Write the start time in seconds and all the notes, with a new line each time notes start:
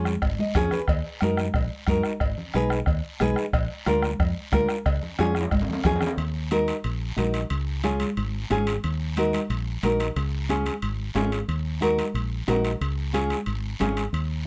Already playing: F2 C#4 F4 G#4
0.05 bombo rim, high conga, short guiro
0.22 G#1, bombo low, bombo rim, cowbell, long guiro
0.39 D#5, high conga
0.55 F2 C#4 F4 G#4 C#5, bombo low, bombo rim, low conga, short guiro
0.71 B4, bombo rim, low conga, short guiro
0.88 D#2, bombo low, bombo rim, cowbell, long guiro
1.21 F#2 D#4 F#4 A#4, bombo rim, high conga, short guiro
1.37 bombo rim, high conga, short guiro
1.54 A#1, bombo low, bombo rim, cowbell, long guiro
1.87 F#2 D#4 F#4 A#4, bombo low, bombo rim, high conga, short guiro
2.03 bombo rim, short guiro
2.20 G#1, bombo low, bombo rim, cowbell, long guiro
2.38 low conga
2.54 B1 D#4 G#4 B4, bombo rim, high conga, short guiro
2.70 bombo rim, short guiro
2.86 D#2, bombo low, bombo rim, cowbell, long guiro
3.20 B1 D#4 G#4 B4, bombo rim, high conga, low conga, short guiro
3.36 bombo rim, short guiro
3.53 A#1, bombo low, bombo rim, cowbell, long guiro
3.86 D2 D4 F4 A#4, bombo rim, high conga, short guiro
4.02 bombo rim, high conga, short guiro
4.19 F2, bombo low, bombo rim, cowbell, long guiro
4.52 D2 D4 F4 A#4, bombo low, bombo rim, high conga, short guiro
4.69 bombo rim, short guiro
4.86 C#2, bombo low, bombo rim, cowbell, long guiro
5.03 low conga
5.19 F2 C#4 F4 G#4, bombo rim, high conga, high timbale, short guiro
5.35 bombo rim, high conga, short guiro
5.41 high timbale
5.51 G#1, bombo low, bombo rim, cowbell, high conga, long guiro
5.62 low timbale
5.69 low conga, low timbale
5.84 F2 C#4 F4 G#4, bombo low, bombo rim, low conga, low timbale, short guiro
5.96 low timbale
6.01 bombo rim, low conga, short guiro
6.07 low timbale
6.17 D#2, high timbale, long guiro
6.51 D#4 F#4 A#4, high conga, high timbale, short guiro
6.68 high timbale, short guiro
6.84 A#1, high timbale, long guiro
7.16 A#1 D#4 F#4 A#4, high conga, high timbale, short guiro
7.34 high timbale, short guiro
7.50 C#2, high timbale, long guiro
7.84 C#4 F4 G#4, high conga, high timbale, short guiro
8.00 high conga, high timbale, short guiro
8.17 G#1, high timbale, long guiro
8.50 G#1 C#4 F4 G#4, high conga, high timbale, short guiro
8.67 high timbale, short guiro
8.84 D#2, high timbale, long guiro
9.16 D#4 F#4 A#4, high conga, high timbale, short guiro
9.33 high conga, high timbale, short guiro
9.50 A#1, high timbale, long guiro
9.83 A#1 D#4 F#4 A#4, high conga, high timbale, short guiro
10.00 high timbale, short guiro
10.16 C#2, high timbale, long guiro
10.49 C#4 F4 G#4, high conga, high timbale, short guiro
10.66 high conga, high timbale, short guiro
10.82 G#1, high timbale, long guiro
11.15 G#1 C#4 F4 G#4, high conga, high timbale, low timbale, short guiro
11.32 high timbale, short guiro
11.48 D#2, high timbale, long guiro
11.81 D#4 F#4 A#4, high conga, high timbale, short guiro
11.98 high conga, high timbale, short guiro
12.14 A#1, high timbale, long guiro
12.47 A#1 D#4 F#4 A#4, high conga, high timbale, low timbale, short guiro
12.65 high timbale, short guiro
12.81 C#2, high timbale, long guiro
13.13 C#4 F4 G#4, high conga, high timbale, short guiro
13.30 high conga, high timbale, short guiro
13.46 G#1, high timbale, long guiro
13.80 G#1 C#4 F4 G#4, high conga, high timbale, low timbale, short guiro
13.97 high timbale, short guiro
14.13 D#2, high timbale, long guiro